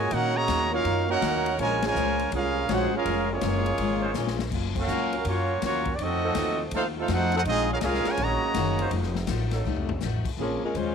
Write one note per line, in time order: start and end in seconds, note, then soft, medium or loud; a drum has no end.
0.00 0.10 G#2 loud
0.00 0.12 A#2 medium
0.00 0.12 C#3 medium
0.00 0.12 G#3 medium
0.00 0.13 F#4 medium
0.00 0.11 C#5 medium
0.00 0.13 D#5 medium
0.00 0.12 G#5 loud
0.11 0.47 A#2 loud
0.11 0.37 D#3 medium
0.11 0.34 A#3 loud
0.11 0.38 A#3 medium
0.11 0.35 C#4 medium
0.11 0.38 C#4 medium
0.11 0.36 D#4 loud
0.11 0.35 F#4 medium
0.11 0.38 F#4 medium
0.11 0.36 A#4 medium
0.11 0.34 C#5 medium
0.11 0.36 F#5 loud
0.11 kick soft
0.11 ride medium
0.34 0.72 C#3 loud
0.34 0.72 F#3 medium
0.34 0.71 A#3 loud
0.34 0.72 F#4 loud
0.34 0.72 C#5 loud
0.34 0.72 D#5 medium
0.34 0.72 A#5 loud
0.48 0.84 D#2 loud
0.48 0.74 D#3 medium
0.48 0.74 A#3 medium
0.48 0.75 C#4 medium
0.48 0.75 F#4 medium
0.48 kick soft
0.48 snare medium
0.48 hi-hat pedal medium
0.48 ride medium
0.71 1.19 F#3 loud
0.71 1.06 A#3 medium
0.71 1.06 C#4 medium
0.71 1.19 C#4 medium
0.71 1.19 D#4 medium
0.71 1.07 D#4 medium
0.71 1.06 F4 medium
0.71 1.19 A#4 loud
0.71 1.07 A#4 medium
0.71 1.07 C#5 medium
0.71 1.07 F5 loud
0.84 1.20 F#2 medium
0.84 1.10 D#3 soft
0.84 1.11 A#3 medium
0.84 1.11 C#4 medium
0.84 1.11 F#4 medium
0.84 kick soft
0.84 ride medium
1.08 1.55 A#3 loud
1.08 1.54 C#4 loud
1.08 1.55 D#4 medium
1.08 1.54 F#4 medium
1.08 1.55 A#4 medium
1.08 1.56 C#5 medium
1.08 1.55 F#5 loud
1.22 1.57 D#2 medium
1.22 1.47 D#3 medium
1.22 1.48 A#3 medium
1.22 1.48 C#4 medium
1.22 1.48 F#4 medium
1.22 kick soft
1.22 snare medium
1.22 hi-hat pedal medium
1.22 ride medium
1.46 ride medium
1.58 1.94 A#1 loud
1.58 1.84 A#2 medium
1.58 1.81 C#3 medium
1.58 1.81 F3 medium
1.58 1.81 G#3 loud
1.58 1.84 G#3 medium
1.58 1.75 G#3 loud
1.58 1.75 C#4 medium
1.58 1.85 C#4 medium
1.58 1.75 F4 medium
1.58 1.82 F4 medium
1.58 1.85 F4 medium
1.58 1.75 A#4 loud
1.58 1.82 A#4 medium
1.58 1.82 C#5 loud
1.58 1.82 G#5 loud
1.58 kick soft
1.58 ride medium
1.82 2.29 C#3 medium
1.82 2.29 F3 medium
1.82 2.29 G#3 medium
1.82 2.30 F4 medium
1.82 2.30 A#4 medium
1.82 2.30 C#5 medium
1.82 2.30 G#5 loud
1.82 snare loud
1.82 ride medium
1.95 2.31 C#2 loud
1.95 2.21 A#2 medium
1.95 2.21 G#3 medium
1.95 2.22 C#4 medium
1.95 2.22 F4 medium
1.95 hi-hat pedal medium
2.19 ride medium
2.31 2.67 C2 loud
2.31 2.57 A#2 medium
2.31 2.57 G#3 medium
2.31 2.69 G#3 medium
2.31 2.69 C#4 medium
2.31 2.58 C#4 medium
2.31 2.70 C#4 medium
2.31 2.69 F4 medium
2.31 2.58 F4 medium
2.31 2.70 G#4 medium
2.31 2.70 F5 loud
2.31 kick soft
2.31 ride medium
2.35 2.70 A#4 medium
2.69 2.91 A#1 medium
2.69 2.94 A#2 medium
2.69 2.94 G#3 medium
2.69 2.86 G#3 loud
2.69 2.86 C#4 loud
2.69 2.95 C#4 medium
2.69 2.94 D#4 medium
2.69 2.85 F4 medium
2.69 2.95 F4 medium
2.69 2.93 F#4 medium
2.69 2.94 G#4 medium
2.69 2.94 C5 medium
2.69 2.85 C#5 loud
2.69 2.94 F#5 medium
2.69 kick soft
2.69 snare medium
2.69 hi-hat pedal medium
2.69 ride medium
2.94 3.28 G#3 medium
2.94 3.27 C#4 medium
2.94 3.28 C#4 medium
2.94 3.28 F4 medium
2.94 3.28 G#4 medium
2.94 3.28 A#4 medium
2.94 3.28 F5 medium
3.05 3.41 F1 medium
3.05 3.31 A#2 medium
3.05 3.62 G#3 loud
3.05 3.31 G#3 medium
3.05 3.62 C#4 loud
3.05 3.32 C#4 medium
3.05 3.62 F4 medium
3.05 3.32 F4 medium
3.05 3.62 A#4 loud
3.05 kick soft
3.05 ride medium
3.31 4.36 F3 medium
3.31 4.36 G#3 medium
3.31 4.37 A#3 medium
3.31 4.36 C#4 medium
3.31 4.37 F4 medium
3.31 4.37 G#4 medium
3.31 4.37 C#5 medium
3.41 3.77 F#1 loud
3.41 3.68 A#2 medium
3.41 3.68 G#3 medium
3.41 3.68 C#4 medium
3.41 3.68 F4 medium
3.41 kick soft
3.41 snare medium
3.41 hi-hat pedal medium
3.41 ride medium
3.66 ride medium
3.78 4.14 G#1 loud
3.78 4.04 A#2 medium
3.78 4.05 G#3 medium
3.78 kick soft
3.78 ride medium
3.82 4.05 C#4 medium
3.82 4.06 F4 medium
4.01 4.10 G#3 loud
4.01 4.11 C#4 loud
4.01 4.10 F4 loud
4.01 4.11 C5 loud
4.14 4.51 A#1 medium
4.14 4.41 A#2 medium
4.14 4.41 G#3 medium
4.14 4.41 C#4 medium
4.14 4.42 F4 medium
4.14 snare medium
4.14 hi-hat pedal medium
4.27 snare medium
4.39 snare loud
4.51 4.87 F#1 medium
4.51 4.77 F#3 medium
4.51 4.78 A#3 medium
4.51 4.79 C#4 medium
4.51 4.79 F4 medium
4.51 kick medium
4.51 crash medium
4.75 5.21 A#3 medium
4.75 5.21 C#4 medium
4.75 5.21 F#4 medium
4.75 5.23 F#4 medium
4.75 kick medium
4.75 crash medium
4.79 5.23 C#4 medium
4.79 5.23 A#4 medium
4.79 5.24 F5 medium
4.88 5.24 C#2 loud
4.88 5.14 F#3 medium
4.88 5.15 A#3 medium
4.88 5.15 C#4 medium
4.88 5.15 F4 medium
4.88 hi-hat pedal medium
5.12 5.59 F#3 medium
5.12 5.59 C#4 medium
5.12 5.59 A#4 loud
5.12 ride medium
5.25 5.61 F#2 loud
5.25 5.62 F#3 medium
5.25 5.51 F#3 soft
5.25 5.61 A#3 medium
5.25 5.51 A#3 medium
5.25 5.63 A#3 medium
5.25 5.61 C#4 medium
5.25 5.52 C#4 medium
5.25 5.64 F4 medium
5.25 5.52 F4 medium
5.25 5.64 F#4 medium
5.25 5.63 C#5 medium
5.25 kick soft
5.25 ride medium
5.62 5.98 D#2 loud
5.62 5.92 F3 medium
5.62 5.88 F#3 medium
5.62 5.92 A#3 medium
5.62 5.88 A#3 medium
5.62 5.93 A#3 medium
5.62 5.92 C#4 medium
5.62 5.88 C#4 medium
5.62 5.93 F4 medium
5.62 5.89 F4 medium
5.62 5.93 F#4 medium
5.62 5.93 C#5 medium
5.62 kick soft
5.62 snare medium
5.62 hi-hat pedal medium
5.62 ride medium
5.85 kick medium
5.85 ride medium
5.95 6.34 F2 loud
5.95 5.99 D5 medium
5.95 kick soft
5.95 ride medium
6.00 6.25 F3 medium
6.00 6.60 A3 medium
6.00 6.25 A3 soft
6.00 6.60 C4 medium
6.00 6.61 C4 medium
6.00 6.60 D#4 medium
6.00 6.26 D#4 soft
6.00 6.61 F#4 medium
6.00 6.26 F#4 medium
6.00 6.61 A4 medium
6.00 6.61 D#5 loud
6.23 6.70 F3 loud
6.23 6.70 F#3 loud
6.23 6.69 D#4 loud
6.23 6.70 A4 loud
6.35 6.71 D#2 loud
6.35 6.61 F3 medium
6.35 6.62 A3 medium
6.35 6.62 D#4 medium
6.35 kick soft
6.35 snare medium
6.35 hi-hat pedal medium
6.35 ride medium
6.39 6.62 F#4 medium
6.71 7.07 D#2 loud
6.71 6.98 F3 soft
6.71 6.84 A3 medium
6.71 6.98 A3 medium
6.71 6.85 C4 medium
6.71 6.85 D#4 medium
6.71 6.99 D#4 medium
6.71 6.85 F4 medium
6.71 6.85 A4 medium
6.71 6.85 C5 medium
6.71 6.85 F5 medium
6.71 kick soft
6.71 ride medium
6.76 6.99 F#4 medium
6.98 7.09 A3 medium
6.98 7.09 C4 medium
6.98 7.10 D#4 medium
6.98 7.09 F4 medium
6.98 7.10 A4 medium
6.98 7.09 C5 medium
6.98 7.09 F5 medium
7.08 7.44 F2 loud
7.08 7.34 F3 medium
7.08 7.35 A3 medium
7.08 7.33 C4 medium
7.08 7.33 D#4 medium
7.08 7.35 D#4 medium
7.08 7.34 D#4 medium
7.08 7.33 F#4 medium
7.08 7.35 F#4 medium
7.08 7.34 A4 medium
7.08 7.34 C5 medium
7.08 kick soft
7.08 snare medium
7.08 hi-hat pedal medium
7.08 ride medium
7.12 7.34 F#5 loud
7.32 7.39 C4 loud
7.32 7.39 D#4 medium
7.32 7.40 D#4 medium
7.32 7.40 F#4 medium
7.32 7.40 A4 medium
7.32 7.40 C5 medium
7.32 7.40 F#5 loud
7.32 ride medium
7.45 7.81 A#1 loud
7.45 7.71 A#2 soft
7.45 7.71 G#3 medium
7.45 7.69 C4 medium
7.45 7.72 C#4 medium
7.45 7.68 D#4 loud
7.45 7.69 F4 medium
7.45 7.69 G#4 loud
7.45 7.69 D#5 loud
7.45 kick soft
7.45 ride medium
7.49 7.72 F4 medium
7.70 7.79 G#3 medium
7.70 7.79 C#4 medium
7.70 7.79 F4 medium
7.70 7.79 G#4 medium
7.70 7.79 A#4 medium
7.70 7.80 F5 loud
7.80 8.04 C2 loud
7.80 8.08 A#2 medium
7.80 7.98 G#3 medium
7.80 8.06 G#3 medium
7.80 8.08 G#3 medium
7.80 7.97 C#4 medium
7.80 8.07 C#4 loud
7.80 8.08 C#4 medium
7.80 7.97 F4 medium
7.80 8.06 F4 medium
7.80 7.98 A#4 loud
7.80 7.82 D#5 medium
7.80 kick soft
7.80 snare medium
7.80 hi-hat pedal medium
7.80 ride medium
7.85 8.07 C#4 medium
7.85 8.09 F4 medium
7.85 8.07 G#4 medium
7.85 8.07 A#4 medium
7.85 8.07 F5 medium
7.94 snare soft
8.05 8.19 C#3 loud
8.05 8.19 F3 medium
8.05 8.19 G#3 medium
8.05 8.19 F4 medium
8.05 8.20 A#4 medium
8.05 8.20 C#5 medium
8.05 8.20 G#5 loud
8.05 snare medium
8.05 ride medium
8.17 8.40 A#1 loud
8.17 8.93 C#3 loud
8.17 8.44 D#3 medium
8.17 8.93 F#3 medium
8.17 8.44 A#3 medium
8.17 8.93 A#3 medium
8.17 8.45 C#4 medium
8.17 8.45 F#4 medium
8.17 kick soft
8.17 ride medium
8.22 8.94 F#4 medium
8.22 8.94 C#5 medium
8.22 8.94 D#5 medium
8.22 8.94 A#5 loud
8.54 8.90 F#1 medium
8.54 8.81 D#3 medium
8.54 8.81 A#3 medium
8.54 8.82 C#4 medium
8.54 8.82 F#4 medium
8.54 kick soft
8.54 snare medium
8.54 hi-hat pedal medium
8.54 ride medium
8.79 8.88 F#3 loud
8.79 8.88 D#4 loud
8.79 8.88 F4 loud
8.79 8.88 C5 loud
8.79 ride medium
8.91 9.27 F1 loud
8.91 9.17 F3 medium
8.91 9.17 A3 medium
8.91 9.18 D#4 medium
8.91 9.18 F#4 medium
8.91 kick soft
8.91 ride medium
9.03 snare soft
9.15 snare medium
9.27 9.64 A1 loud
9.27 9.54 F3 medium
9.27 9.54 A3 medium
9.27 9.55 D#4 medium
9.27 9.55 F#4 medium
9.27 kick soft
9.27 snare medium
9.27 hi-hat pedal medium
9.27 ride medium
9.51 9.98 F#3 medium
9.51 9.99 D#4 loud
9.51 9.99 F4 medium
9.51 9.99 A4 loud
9.51 snare medium
9.51 ride medium
9.65 10.00 C2 loud
9.65 9.90 F3 medium
9.65 9.91 A3 medium
9.65 9.91 D#4 medium
9.65 9.92 F#4 medium
9.77 floor tom medium
9.89 floor tom loud
10.01 10.24 A1 medium
10.01 10.28 F3 medium
10.01 10.28 A3 medium
10.01 10.28 D#4 medium
10.01 snare medium
10.01 hi-hat pedal medium
10.05 10.29 F#4 medium
10.25 muted upright bass stroke soft
10.25 kick medium
10.25 crash medium
10.37 10.60 A#1 medium
10.37 10.63 A#2 soft
10.37 10.64 F3 soft
10.37 10.62 F3 medium
10.37 10.64 G#3 soft
10.37 10.95 G#3 soft
10.37 10.95 A#3 soft
10.37 10.62 A#3 medium
10.37 10.95 C4 soft
10.37 10.95 C#4 soft
10.37 10.62 C#4 medium
10.37 10.65 C#4 soft
10.37 10.95 F4 medium
10.37 10.62 G#4 medium
10.37 kick soft
10.64 10.75 G#3 medium
10.64 10.75 C#4 medium
10.64 10.75 F4 medium
10.64 10.75 A#4 medium
10.74 10.95 D#2 medium
10.74 10.95 A#2 medium
10.74 10.95 F3 medium
10.74 10.95 G#3 medium
10.74 10.95 C#4 medium
10.74 10.95 F4 medium
10.74 10.95 C5 loud
10.74 kick soft
10.74 hi-hat pedal medium
10.74 ride medium